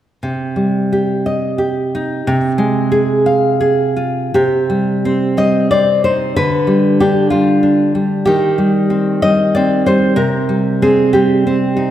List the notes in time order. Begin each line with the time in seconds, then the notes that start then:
0.23 C3
0.56 G3
0.92 G4
1.26 D#5
1.58 G4
1.95 D#4
2.27 C3
2.58 G#3
2.92 G#4
3.26 F5
3.61 G#4
3.97 F4
4.34 C3 G4
4.70 G3
5.05 C4
5.37 G3 D#5
5.71 C4 D5
6.04 D#4 C5
6.36 D3 B4
6.67 G3
7.00 D4 G4
7.30 G3 F4
7.63 D4
7.95 G3
8.26 D#3 G4
8.58 G3
8.90 C4
9.22 G3 D#5
9.55 C4 D5
9.86 G3 C5
10.16 C3 A#4
10.49 G3
10.82 C4 G#4
11.13 G3 G4
11.47 C4
11.77 D#4